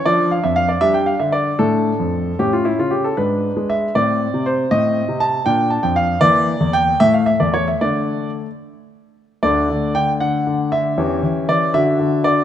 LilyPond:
<<
  \new Staff \with { instrumentName = "Grand piano" } { \time 6/8 \key d \minor \tempo 4. = 77 << { d''8 f''16 e''16 f''16 d''16 e''16 g''16 f''16 e''16 d''8 | a'4. g'16 f'16 e'16 f'16 g'16 a'16 | b'4 e''8 d''4 c''8 | ees''4 a''8 g''8 a''16 g''16 f''8 |
d''4 g''8 e''16 f''16 e''16 d''16 cis''16 e''16 | d''4. r4. | \key d \major d''4 g''8 fis''4 e''8~ | e''4 d''8 e''4 d''8 | } \\ { d'4. d'4. | d'4. cis'4. | d'4. c'4. | c'4. d'4. |
bes4. a4. | r2. | <a d'>2. | <cis' g'>4. <d' fis'>4. | } >> }
  \new Staff \with { instrumentName = "Grand piano" } { \clef bass \time 6/8 \key d \minor f8. f,8. g8. d8. | a,8. f,8. a,8. cis8. | gis,8. gis8. a,8. c8. | a,8. c8. bes,8. f,8. |
e8. e,8. a,8. e,8. | <d a d'>4. r4. | \key d \major <d, d>8 d8 d8 d8 d8 d8 | <e, e>8 e8 e8 d8 d8 d8 | }
>>